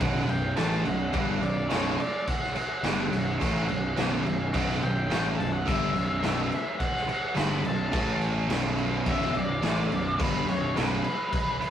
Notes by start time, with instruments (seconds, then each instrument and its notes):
0.00 picked electric bass B0, distorted electric guitar B1 F#2 B2, lead electric guitar F#5, kick, crash
0.16 snare
0.28 picked electric bass B0, distorted electric guitar B1 F#2, lead electric guitar G5, crash
0.56 picked electric bass A1, distorted electric guitar A2 E3 A3, lead electric guitar A5, snare, crash
0.84 picked electric bass B0, distorted electric guitar B1 F#2, lead electric guitar F#5, crash
1.13 picked electric bass G1, distorted electric guitar G2 D3 G3, kick, crash
1.41 picked electric bass B0, distorted electric guitar B1 F#2, lead electric guitar D5, crash
1.70 picked electric bass B0, distorted electric guitar B1 F#2 B2, lead electric guitar C#5, snare, crash
2.00 lead electric guitar D5, crash
2.28 lead electric guitar F#5, kick, crash
2.43 snare
2.54 muted distorted electric guitar stroke, muted picked electric bass stroke, crash
2.83 picked electric bass G1, distorted electric guitar G2 D3 G3, snare, crash
3.11 picked electric bass B0, distorted electric guitar B1 F#2, crash
3.41 picked electric bass A1, distorted electric guitar A2 E3 A3, kick, crash
3.69 picked electric bass B0, distorted electric guitar B1 F#2, crash
3.97 picked electric bass B0, distorted electric guitar B1 F#2 B2, snare, crash
4.26 picked electric bass B0, distorted electric guitar B1 F#2, crash
4.54 picked electric bass B0, distorted electric guitar B1 F#2 B2, lead electric guitar F#5, kick, crash
4.69 snare
4.82 picked electric bass B0, distorted electric guitar B1 F#2, lead electric guitar G5, crash
5.10 picked electric bass A1, distorted electric guitar A2 E3 A3, snare, crash
5.38 picked electric bass B0, distorted electric guitar B1 F#2, lead electric guitar A5, crash
5.53 lead electric guitar F#5
5.66 picked electric bass G1, distorted electric guitar G2 D3 G3, lead electric guitar E5, kick, crash
5.95 picked electric bass B0, distorted electric guitar B1 F#2, crash
6.22 picked electric bass B0, distorted electric guitar B1 F#2 B2, snare, crash
6.52 crash
6.79 lead electric guitar F#5, kick, crash
6.96 snare
7.07 muted distorted electric guitar stroke, muted picked electric bass stroke, crash
7.35 picked electric bass G1, distorted electric guitar G2 D3 G3, lead electric guitar B5, snare, crash
7.64 picked electric bass B0, distorted electric guitar B1 F#2, lead electric guitar A5, crash
7.92 picked electric bass A1, distorted electric guitar A2 E3 A3, kick, crash
8.21 crash
8.48 picked electric bass B0, distorted electric guitar B1 F#2 B2, snare, crash
8.78 crash
9.05 picked electric bass B0, distorted electric guitar B1 F#2 B2, lead electric guitar E5, kick, crash
9.21 snare
9.34 picked electric bass B0, distorted electric guitar B1 F#2, lead electric guitar D5, crash
9.62 picked electric bass A1, distorted electric guitar A2 E3 A3, snare, crash
9.90 picked electric bass B0, distorted electric guitar B1 F#2, crash
10.18 picked electric bass G1, distorted electric guitar G2 D3 G3, lead electric guitar B4, kick, crash
10.47 picked electric bass B0, distorted electric guitar B1 F#2, lead electric guitar C#5, crash
10.76 picked electric bass B0, distorted electric guitar B1 F#2 B2, lead electric guitar B4, snare, crash
11.04 crash
11.33 kick, crash
11.60 muted picked electric bass stroke, muted distorted electric guitar stroke, crash